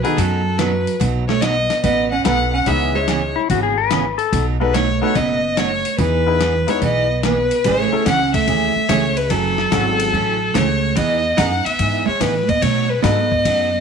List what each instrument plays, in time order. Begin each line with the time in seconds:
0.03 hollow-body jazz guitar D#3, upright piano B3 D#4 F#4 A4 B4, fiddle G#4, open hi-hat
0.17 upright bass F#2, steel-string acoustic guitar B2 F#3 A3 D#4 F#4, hollow-body jazz guitar F#3, fiddle A4, kick, open hi-hat
0.58 steel-string acoustic guitar B2 F#3 A3 D#4 F#4, hollow-body jazz guitar F#3, fiddle B4, snare, closed hi-hat
0.87 open hi-hat
1.00 upright bass B1, steel-string acoustic guitar B2 F#3 A3 D#4 F#4, kick, open hi-hat
1.28 hollow-body jazz guitar A3, fiddle C#5, snare
1.41 steel-string acoustic guitar B2 F#3 A3 D#4 F#4, hollow-body jazz guitar B3, fiddle D#5, snare, closed hi-hat
1.70 snare, open hi-hat
1.83 upright bass A1, steel-string acoustic guitar B2 F#3 A3 D#4 F#4, hollow-body jazz guitar B3, fiddle D#5, kick, open hi-hat
2.11 hollow-body jazz guitar C#4, fiddle F#5
2.24 upright bass B1, steel-string acoustic guitar B2 F#3 A3 D#4 F#4, upright piano B3 D#4 F#4 A4 B4, hollow-body jazz guitar B3, fiddle F#5, snare, closed hi-hat
2.52 hollow-body jazz guitar C#4, fiddle F#5
2.66 upright bass C#2, steel-string acoustic guitar C#3 E3 B3 C#4 G#4, hollow-body jazz guitar B3, upright piano C#4 D#4 E4 G#4 B4, fiddle E5, kick, open hi-hat
2.95 hollow-body jazz guitar G#3, fiddle C#5
3.08 steel-string acoustic guitar C#3 E3 B3 C#4 G#4, snare, closed hi-hat
3.36 electric slide guitar E4
3.50 upright bass G#1, steel-string acoustic guitar C#3 E3 B3 C#4 G#4, electric slide guitar F#4, kick, open hi-hat
3.63 electric slide guitar G#4
3.78 electric slide guitar B4
3.91 steel-string acoustic guitar C#3 E3 B3 C#4 G#4, snare, closed hi-hat
4.18 electric slide guitar A4, open hi-hat
4.33 upright bass B1, steel-string acoustic guitar B2 F#3 A3 D#4 F#4, kick, open hi-hat
4.60 hollow-body jazz guitar G#3, upright piano B3 D#4 F#4 A4 B4, fiddle B4
4.74 steel-string acoustic guitar B2 F#3 A3 D#4 F#4, hollow-body jazz guitar A3, fiddle C#5, snare, closed hi-hat
5.01 hollow-body jazz guitar A3, upright piano B3 D#4 F#4 A4 B4, fiddle C#5
5.15 upright bass F#1, steel-string acoustic guitar B2 F#3 A3 D#4 F#4, hollow-body jazz guitar B3, fiddle D#5, kick, open hi-hat
5.57 steel-string acoustic guitar B2 F#3 A3 D#4 F#4, hollow-body jazz guitar A3, fiddle C#5, snare, closed hi-hat
5.85 open hi-hat
5.98 upright bass E2, steel-string acoustic guitar E3 B3 D#4 G#4, hollow-body jazz guitar E3, fiddle B4, kick, open hi-hat
6.26 upright piano B3 D#4 E4 G#4 B4
6.41 steel-string acoustic guitar E3 B3 D#4 G#4, snare, closed hi-hat
6.67 hollow-body jazz guitar G#3, upright piano B3 D#4 E4 G#4 B4, fiddle C#5, open hi-hat
6.82 upright bass B1, steel-string acoustic guitar E3 B3 D#4 G#4, hollow-body jazz guitar B3, fiddle D#5, kick, open hi-hat
7.23 steel-string acoustic guitar E3 B3 D#4 G#4, hollow-body jazz guitar B3, fiddle B4, snare, closed hi-hat
7.51 open hi-hat
7.64 upright bass A1, steel-string acoustic guitar C#3 E3 A3 C#4 G#4, hollow-body jazz guitar A3, fiddle C#5, kick, ride
7.92 upright piano A3 C#4 E4 G#4 A4, muted upright bass stroke
8.06 upright bass C#2, steel-string acoustic guitar C#3 E3 A3 C#4 G#4, hollow-body jazz guitar C#4, fiddle F#5, kick, snare, hi-hat pedal, ride
8.34 hollow-body jazz guitar A3, fiddle E5, kick, ride
8.47 upright bass D#2, steel-string acoustic guitar C#3 E3 A3 C#4 G#4, kick, ride
8.76 muted upright bass stroke
8.89 upright bass C#2, steel-string acoustic guitar C#3 E3 A3 C#4 G#4, hollow-body jazz guitar A3, fiddle C#5, kick, snare, hi-hat pedal, ride
9.17 hollow-body jazz guitar G#3, fiddle B4, ride
9.30 upright bass F#1, steel-string acoustic guitar C#3 E3 A3 C#4 F#4, hollow-body jazz guitar F#3, fiddle A4, kick, ride
9.58 snare
9.71 upright bass G#1, steel-string acoustic guitar C#3 E3 A3 C#4 F#4, upright piano A3 C#4 E4 F#4 A4, kick, snare, hi-hat pedal, ride
10.00 ride
10.13 upright bass A1, steel-string acoustic guitar C#3 E3 A3 C#4 F#4, kick
10.54 upright bass C#2, steel-string acoustic guitar C#3 E3 A3 C#4 F#4, hollow-body jazz guitar A3, fiddle C#5, kick, snare, hi-hat pedal, ride
10.96 upright bass E2, steel-string acoustic guitar E3 B3 D#4 G#4, hollow-body jazz guitar B3, fiddle D#5, kick, ride
11.37 upright bass F#2, steel-string acoustic guitar E3 B3 D#4 G#4, hollow-body jazz guitar D#4, fiddle F#5, kick, snare, hi-hat pedal, ride
11.65 hollow-body jazz guitar B3, fiddle E5, muted upright bass stroke, ride
11.79 upright bass G#2, steel-string acoustic guitar E3 B3 D#4 G#4, kick, ride
12.06 hollow-body jazz guitar G#3, fiddle C#5, muted upright bass stroke
12.20 upright bass A2, hollow-body jazz guitar E3, steel-string acoustic guitar E3 B3 D#4 G#4, fiddle B4, kick, snare, hi-hat pedal, ride
12.48 hollow-body jazz guitar B3, fiddle D#5, kick, ride
12.61 steel-string acoustic guitar B2 F#3 A3 D#4 F#4, upright bass B2, hollow-body jazz guitar A3, fiddle C#5, kick, ride
12.89 hollow-body jazz guitar G#3, fiddle B4
13.02 upright bass G#2, steel-string acoustic guitar B2 F#3 A3 D#4 F#4, hollow-body jazz guitar B3, upright piano B3 D#4 F#4 A4 B4, fiddle D#5, kick, snare, hi-hat pedal, ride
13.32 kick
13.45 upright bass F#2, steel-string acoustic guitar B2 F#3 A3 D#4 F#4, kick, ride